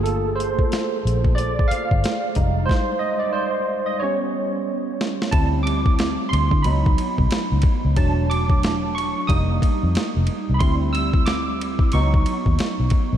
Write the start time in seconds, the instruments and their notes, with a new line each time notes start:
Already playing: fingered electric bass G1, tine electric piano A3 A#3 F4 G#4
0.03 tine electric piano A4, closed hi-hat
0.36 tine electric piano C5
0.40 closed hi-hat
0.59 kick
0.72 snare, closed hi-hat
1.05 fingered electric bass A#1, closed hi-hat
1.25 kick
1.35 tine electric piano D5, closed hi-hat
1.59 kick
1.68 tine electric piano F5, muted fingered electric bass stroke, closed hi-hat
1.91 fingered electric bass G1, kick
2.04 snare, closed hi-hat
2.35 fingered electric bass F1, tine electric piano G3 G#3 D#4, kick, closed hi-hat
2.66 tine electric piano C5, kick
2.71 snare
2.99 tine electric piano D#5
3.19 tine electric piano D5
3.33 tine electric piano C5
3.86 tine electric piano D#5
4.00 tine electric piano G3 B3 C#4 C#5
5.01 snare
5.22 snare
5.31 fingered electric bass D2, tine electric piano G3 C4 E4 A5, kick, ride
5.63 tine electric piano D6
5.67 ride
5.86 kick
5.99 snare, ride
6.29 fingered electric bass D2, tine electric piano C6
6.33 ride
6.51 fingered electric bass D3, kick
6.63 fingered electric bass C#2, tine electric piano F#3 B3 D#4 B5, ride
6.86 kick
6.98 ride
7.18 fingered electric bass B1, kick
7.31 snare, ride
7.52 fingered electric bass C#2
7.62 kick, ride
7.85 fingered electric bass C#2
7.96 fingered electric bass E1, tine electric piano F#3 A3 D4 A5, kick, ride
8.30 tine electric piano D6, ride
8.49 kick
8.63 snare, ride
8.95 tine electric piano C#6, ride
9.27 fingered electric bass F1, tine electric piano G3 A#3 D#4 D#6, kick, ride
9.62 kick, ride
9.83 fingered electric bass F2
9.95 muted fingered electric bass stroke, snare, ride
10.17 fingered electric bass F1
10.27 ride
10.49 fingered electric bass C2
10.54 tine electric piano B5
10.59 fingered electric bass D2, tine electric piano G3 C4 E4 C6, kick, ride
10.93 tine electric piano E6, ride
11.13 kick
11.26 tine electric piano D6, snare, ride
11.61 ride
11.79 kick
11.92 fingered electric bass C#2, tine electric piano F#3 B3 D#4 C#6, ride
12.14 kick
12.26 ride
12.46 fingered electric bass D#2, kick
12.59 muted fingered electric bass stroke, snare, ride
12.80 fingered electric bass B1
12.90 kick, ride
13.13 fingered electric bass A#1